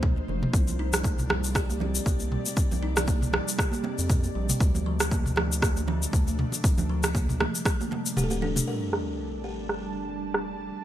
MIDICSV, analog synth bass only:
0, 0, Header, 1, 2, 480
1, 0, Start_track
1, 0, Key_signature, -2, "minor"
1, 0, Tempo, 508475
1, 511, Time_signature, 4, 2, 24, 8
1, 10236, End_track
2, 0, Start_track
2, 0, Title_t, "Analog synth bass"
2, 0, Program_c, 0, 38
2, 0, Note_on_c, 0, 38, 103
2, 207, Note_off_c, 0, 38, 0
2, 272, Note_on_c, 0, 29, 92
2, 432, Note_off_c, 0, 29, 0
2, 505, Note_on_c, 0, 36, 98
2, 1885, Note_off_c, 0, 36, 0
2, 1945, Note_on_c, 0, 36, 94
2, 2242, Note_off_c, 0, 36, 0
2, 2566, Note_on_c, 0, 36, 97
2, 3207, Note_off_c, 0, 36, 0
2, 3764, Note_on_c, 0, 41, 107
2, 4047, Note_off_c, 0, 41, 0
2, 4111, Note_on_c, 0, 34, 96
2, 4272, Note_off_c, 0, 34, 0
2, 4346, Note_on_c, 0, 38, 98
2, 5725, Note_off_c, 0, 38, 0
2, 5788, Note_on_c, 0, 38, 93
2, 6084, Note_off_c, 0, 38, 0
2, 6404, Note_on_c, 0, 38, 98
2, 7045, Note_off_c, 0, 38, 0
2, 7714, Note_on_c, 0, 26, 89
2, 8129, Note_off_c, 0, 26, 0
2, 10236, End_track
0, 0, End_of_file